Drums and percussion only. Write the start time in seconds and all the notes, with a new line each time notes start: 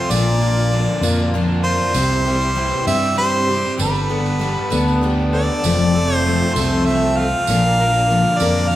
0.11 tambourine
0.57 tambourine
1.03 tambourine
1.17 tambourine
1.94 tambourine
2.41 tambourine
2.88 tambourine
3.03 tambourine
3.17 tambourine
3.79 tambourine
3.94 tambourine
4.26 tambourine
4.41 tambourine
4.72 tambourine
4.88 tambourine
5.64 tambourine
6.10 tambourine
6.56 tambourine
6.71 tambourine
6.85 tambourine
7.47 tambourine
7.94 tambourine
8.40 tambourine
8.56 tambourine
8.71 tambourine